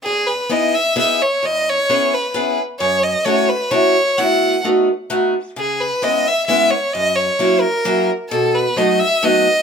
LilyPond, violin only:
\new Staff \with { instrumentName = "Violin" } { \time 3/4 \key e \major \tempo 4 = 131 gis'8 b'8 dis''8 e''8 e''8 cis''8 | dis''8 cis''4 b'4 r8 | cis''8 dis''8 cis''8 b'8 cis''4 | fis''4 r2 |
gis'8 b'8 dis''8 e''8 e''8 cis''8 | dis''8 cis''4 ais'4 r8 | a'8 b'8 dis''8 e''8 dis''4 | }